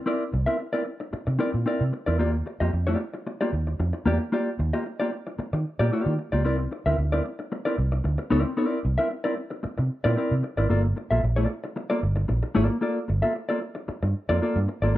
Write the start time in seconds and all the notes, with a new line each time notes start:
0.06 C4 E4 A#4 D5
0.33 C2, muted clean electric guitar stroke
0.46 C4 E4 A#4 E5
0.59 muted clean electric guitar stroke
0.73 C4 E4 A#4 D5
0.85 muted clean electric guitar stroke
1.00 muted clean electric guitar stroke
1.13 muted clean electric guitar stroke, muted fingered electric bass stroke
1.27 C3, muted clean electric guitar stroke
1.39 C4 E4 A#4 D5
1.53 A#2, muted clean electric guitar stroke
1.66 C4 E4 A#4 D5
1.81 C3
1.93 muted clean electric guitar stroke
2.06 E2 C4 E4 A#4 D5
2.19 D#2 A#3 F4 G4 D5
2.33 muted clean electric guitar stroke
2.46 muted clean electric guitar stroke
2.60 F2 A#3 F4 G4 D#5
2.73 F2, muted clean electric guitar stroke
2.87 A#3 F4 G4 D5
3.00 muted clean electric guitar stroke
3.14 muted clean electric guitar stroke
3.27 muted clean electric guitar stroke
3.41 A#3 F4 G4 D5
3.53 D#2, muted clean electric guitar stroke
3.67 muted clean electric guitar stroke
3.80 F2, muted clean electric guitar stroke
3.93 muted clean electric guitar stroke
4.06 E2 A#3 F4 G4 D5
4.20 muted clean electric guitar stroke
4.32 A#3 F4 G4 D5
4.59 D#2, muted clean electric guitar stroke
4.73 A#3 F4 G4 D#5
4.86 muted clean electric guitar stroke
5.00 A#3 F4 G4 D5
5.13 muted clean electric guitar stroke
5.27 muted clean electric guitar stroke
5.39 muted clean electric guitar stroke, muted fingered electric bass stroke
5.53 D#3, muted clean electric guitar stroke
5.79 A#2 A#3 F4 G4 D5
5.92 A#3 F4 G4 D5
6.06 D#3
6.18 muted clean electric guitar stroke
6.32 C#2 A#3 F4 G4 D5
6.44 C2 C4 E4 A#4 D5
6.59 muted clean electric guitar stroke
6.71 muted clean electric guitar stroke
6.86 D2 C4 E4 A#4 E5
6.98 D2, muted clean electric guitar stroke
7.12 C4 E4 A#4 D5
7.25 muted clean electric guitar stroke
7.39 muted clean electric guitar stroke
7.52 muted clean electric guitar stroke
7.65 C4 E4 A#4 D5
7.78 C2, muted clean electric guitar stroke
7.92 muted clean electric guitar stroke
8.04 D2, muted clean electric guitar stroke
8.18 muted clean electric guitar stroke
8.30 C#2 C4 E4 A#4 D5
8.44 muted clean electric guitar stroke
8.57 C4 E4 A#4 D5
8.84 C2, muted clean electric guitar stroke
8.98 C4 E4 A#4 E5
9.10 muted clean electric guitar stroke
9.24 C4 E4 A#4 D5
9.36 muted clean electric guitar stroke
9.50 muted clean electric guitar stroke
9.63 muted clean electric guitar stroke, muted fingered electric bass stroke
9.78 C3, muted clean electric guitar stroke
10.04 A#2 C4 E4 A#4 D5
10.17 C4 E4 A#4 D5
10.31 C3
10.43 muted clean electric guitar stroke
10.57 G#1 C4 E4 A#4 D5
10.70 G1 A#3 F4 A4 D5
10.84 muted clean electric guitar stroke
10.96 muted clean electric guitar stroke
11.11 A#1 A#3 F4 A4 E5
11.23 A#1, muted clean electric guitar stroke
11.36 A#3 F4 A4 D5
11.49 muted clean electric guitar stroke
11.64 muted clean electric guitar stroke
11.76 muted clean electric guitar stroke
11.90 A#3 F4 A4 D5
12.02 G1, muted clean electric guitar stroke
12.16 muted clean electric guitar stroke
12.28 A#1, muted clean electric guitar stroke
12.43 muted clean electric guitar stroke
12.55 G#1 A#3 F4 A4 D5
12.69 muted clean electric guitar stroke
12.81 A#3 F4 A4 D5
13.08 G1, muted clean electric guitar stroke
13.22 A#3 F4 A4 E5
13.35 muted clean electric guitar stroke
13.49 A#3 F4 A4 D5
13.61 muted clean electric guitar stroke
13.75 muted clean electric guitar stroke
13.88 muted clean electric guitar stroke, muted fingered electric bass stroke
14.03 G2, muted clean electric guitar stroke
14.29 F2 A#3 F4 A4 D5
14.41 A#3 F4 A4 D5
14.56 G2
14.68 muted clean electric guitar stroke
14.82 G#1 A#3 F4 A4 D5